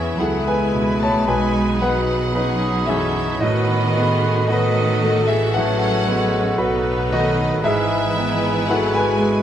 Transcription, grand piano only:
0, 0, Header, 1, 2, 480
1, 0, Start_track
1, 0, Tempo, 1077199
1, 1525, Time_signature, 4, 2, 24, 8
1, 2002, Tempo, 1043478
1, 4270, End_track
2, 0, Start_track
2, 0, Title_t, "Grand piano"
2, 0, Program_c, 0, 0
2, 0, Control_c, 0, 64, 127
2, 0, Note_on_c, 0, 40, 50
2, 0, Note_on_c, 0, 59, 41
2, 0, Note_on_c, 0, 68, 45
2, 0, Note_on_c, 0, 76, 54
2, 65, Note_off_c, 0, 76, 0
2, 66, Note_off_c, 0, 68, 0
2, 70, Note_off_c, 0, 40, 0
2, 90, Note_on_c, 0, 64, 38
2, 90, Note_on_c, 0, 78, 56
2, 91, Note_on_c, 0, 68, 41
2, 93, Note_on_c, 0, 69, 42
2, 200, Note_off_c, 0, 78, 0
2, 202, Note_off_c, 0, 69, 0
2, 211, Note_on_c, 0, 80, 63
2, 213, Note_on_c, 0, 71, 49
2, 232, Note_off_c, 0, 59, 0
2, 312, Note_off_c, 0, 64, 0
2, 312, Note_off_c, 0, 68, 0
2, 327, Note_on_c, 0, 47, 45
2, 433, Note_off_c, 0, 80, 0
2, 435, Note_off_c, 0, 71, 0
2, 458, Note_on_c, 0, 81, 67
2, 460, Note_on_c, 0, 73, 52
2, 565, Note_off_c, 0, 81, 0
2, 566, Note_off_c, 0, 73, 0
2, 567, Note_on_c, 0, 80, 61
2, 568, Note_off_c, 0, 47, 0
2, 570, Note_on_c, 0, 71, 47
2, 571, Note_on_c, 0, 35, 56
2, 575, Control_c, 0, 64, 0
2, 656, Control_c, 0, 64, 127
2, 791, Note_off_c, 0, 80, 0
2, 792, Note_off_c, 0, 71, 0
2, 810, Note_on_c, 0, 78, 68
2, 811, Note_on_c, 0, 59, 46
2, 811, Note_on_c, 0, 71, 51
2, 1042, Note_off_c, 0, 71, 0
2, 1046, Note_on_c, 0, 63, 45
2, 1049, Note_on_c, 0, 71, 53
2, 1193, Note_off_c, 0, 59, 0
2, 1268, Note_off_c, 0, 63, 0
2, 1270, Note_off_c, 0, 71, 0
2, 1270, Note_off_c, 0, 78, 0
2, 1277, Note_on_c, 0, 76, 60
2, 1282, Note_on_c, 0, 68, 46
2, 1290, Note_on_c, 0, 42, 46
2, 1503, Note_off_c, 0, 76, 0
2, 1505, Note_off_c, 0, 68, 0
2, 1509, Note_off_c, 0, 35, 0
2, 1517, Note_on_c, 0, 75, 69
2, 1523, Note_on_c, 0, 45, 59
2, 1523, Note_on_c, 0, 66, 54
2, 1526, Note_off_c, 0, 42, 0
2, 1533, Control_c, 0, 64, 0
2, 1597, Control_c, 0, 64, 127
2, 1766, Note_on_c, 0, 59, 50
2, 1979, Note_off_c, 0, 75, 0
2, 1982, Note_off_c, 0, 66, 0
2, 1994, Note_on_c, 0, 75, 61
2, 2001, Note_on_c, 0, 66, 51
2, 2015, Note_on_c, 0, 71, 56
2, 2150, Note_off_c, 0, 59, 0
2, 2234, Note_off_c, 0, 71, 0
2, 2249, Note_on_c, 0, 57, 58
2, 2344, Note_off_c, 0, 75, 0
2, 2347, Note_off_c, 0, 66, 0
2, 2359, Note_on_c, 0, 76, 67
2, 2365, Note_on_c, 0, 68, 54
2, 2467, Note_off_c, 0, 45, 0
2, 2475, Note_off_c, 0, 76, 0
2, 2478, Note_off_c, 0, 68, 0
2, 2483, Note_on_c, 0, 78, 75
2, 2487, Note_on_c, 0, 69, 57
2, 2499, Note_on_c, 0, 45, 51
2, 2633, Note_off_c, 0, 57, 0
2, 2728, Note_on_c, 0, 59, 50
2, 2944, Note_off_c, 0, 78, 0
2, 2946, Note_off_c, 0, 69, 0
2, 2960, Note_on_c, 0, 66, 58
2, 2963, Note_on_c, 0, 71, 58
2, 3107, Note_off_c, 0, 59, 0
2, 3181, Note_off_c, 0, 66, 0
2, 3183, Note_off_c, 0, 71, 0
2, 3207, Note_on_c, 0, 57, 55
2, 3213, Note_on_c, 0, 75, 73
2, 3215, Note_on_c, 0, 66, 56
2, 3431, Note_off_c, 0, 45, 0
2, 3432, Note_off_c, 0, 75, 0
2, 3433, Note_off_c, 0, 66, 0
2, 3446, Note_off_c, 0, 57, 0
2, 3449, Note_on_c, 0, 44, 67
2, 3452, Control_c, 0, 64, 0
2, 3453, Note_on_c, 0, 76, 75
2, 3460, Note_on_c, 0, 68, 53
2, 3526, Control_c, 0, 64, 127
2, 3694, Note_on_c, 0, 59, 51
2, 3910, Note_off_c, 0, 76, 0
2, 3914, Note_off_c, 0, 68, 0
2, 3935, Note_on_c, 0, 71, 50
2, 3936, Note_on_c, 0, 64, 47
2, 3939, Note_on_c, 0, 78, 64
2, 3946, Note_on_c, 0, 69, 46
2, 4043, Note_off_c, 0, 78, 0
2, 4046, Note_off_c, 0, 69, 0
2, 4052, Note_off_c, 0, 71, 0
2, 4052, Note_on_c, 0, 80, 75
2, 4059, Note_on_c, 0, 71, 53
2, 4071, Note_off_c, 0, 59, 0
2, 4149, Note_off_c, 0, 64, 0
2, 4164, Note_on_c, 0, 56, 52
2, 4270, Note_off_c, 0, 44, 0
2, 4270, Note_off_c, 0, 56, 0
2, 4270, Note_off_c, 0, 71, 0
2, 4270, Note_off_c, 0, 80, 0
2, 4270, End_track
0, 0, End_of_file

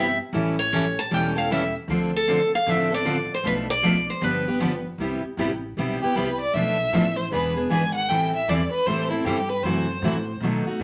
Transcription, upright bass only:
0, 0, Header, 1, 3, 480
1, 0, Start_track
1, 0, Tempo, 388098
1, 408, Time_signature, 4, 2, 24, 8
1, 13397, End_track
2, 0, Start_track
2, 0, Title_t, "Upright bass"
2, 0, Program_c, 0, 32
2, 0, Note_on_c, 0, 43, 78
2, 211, Note_off_c, 0, 43, 0
2, 404, Note_on_c, 0, 33, 89
2, 1174, Note_off_c, 0, 33, 0
2, 1375, Note_on_c, 0, 28, 80
2, 2141, Note_off_c, 0, 28, 0
2, 2322, Note_on_c, 0, 38, 84
2, 3092, Note_off_c, 0, 38, 0
2, 3294, Note_on_c, 0, 33, 84
2, 4059, Note_off_c, 0, 33, 0
2, 4251, Note_on_c, 0, 35, 82
2, 5017, Note_off_c, 0, 35, 0
2, 5216, Note_on_c, 0, 31, 87
2, 5979, Note_off_c, 0, 31, 0
2, 6161, Note_on_c, 0, 36, 78
2, 6442, Note_off_c, 0, 36, 0
2, 6644, Note_on_c, 0, 33, 82
2, 7110, Note_off_c, 0, 33, 0
2, 7134, Note_on_c, 0, 35, 76
2, 7409, Note_off_c, 0, 35, 0
2, 7609, Note_on_c, 0, 36, 78
2, 8072, Note_off_c, 0, 36, 0
2, 8084, Note_on_c, 0, 35, 77
2, 8549, Note_off_c, 0, 35, 0
2, 8561, Note_on_c, 0, 33, 85
2, 9028, Note_off_c, 0, 33, 0
2, 9045, Note_on_c, 0, 28, 77
2, 9510, Note_off_c, 0, 28, 0
2, 9531, Note_on_c, 0, 32, 82
2, 9992, Note_off_c, 0, 32, 0
2, 10001, Note_on_c, 0, 33, 82
2, 10468, Note_off_c, 0, 33, 0
2, 10483, Note_on_c, 0, 40, 81
2, 10763, Note_off_c, 0, 40, 0
2, 10957, Note_on_c, 0, 45, 80
2, 11425, Note_off_c, 0, 45, 0
2, 11441, Note_on_c, 0, 43, 87
2, 11902, Note_off_c, 0, 43, 0
2, 11909, Note_on_c, 0, 42, 78
2, 12382, Note_off_c, 0, 42, 0
2, 12391, Note_on_c, 0, 45, 89
2, 12863, Note_off_c, 0, 45, 0
2, 12868, Note_on_c, 0, 47, 83
2, 13155, Note_off_c, 0, 47, 0
2, 13352, Note_on_c, 0, 42, 83
2, 13397, Note_off_c, 0, 42, 0
2, 13397, End_track
3, 0, Start_track
3, 0, Title_t, "Muted upright bass strokes"
3, 6468, Note_on_c, 9, 29, 35
3, 6592, Note_off_c, 9, 29, 0
3, 7428, Note_on_c, 9, 29, 33
3, 7552, Note_off_c, 9, 29, 0
3, 10781, Note_on_c, 9, 29, 40
3, 10905, Note_off_c, 9, 29, 0
3, 13186, Note_on_c, 9, 29, 37
3, 13310, Note_off_c, 9, 29, 0
3, 13397, End_track
0, 0, End_of_file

